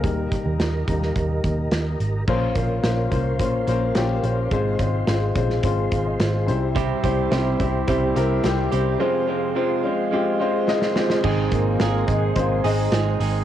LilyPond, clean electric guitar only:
\new Staff \with { instrumentName = "Clean electric guitar" } { \time 4/4 \key aes \major \tempo 4 = 107 r1 | r1 | r1 | <c g c' e' g'>8 <c g c' e' g'>8 <c g c' e' g'>8 <c' e' g'>8 <g c' e' g'>8 <c' e' g'>4 <c' e' g'>8 |
<f, c f aes c' f'>8 <f, c f aes c' f'>8 <f, c f aes c' f'>8 <f aes c' f'>8 <f aes c' f'>8 <f aes c' f'>4 <f aes c' f'>8 | <aes, ees aes c' ees' aes'>4 <aes c' ees' aes'>4. <aes c' ees' aes'>8 <aes c' ees' aes'>8 <aes c' ees' aes'>8 | }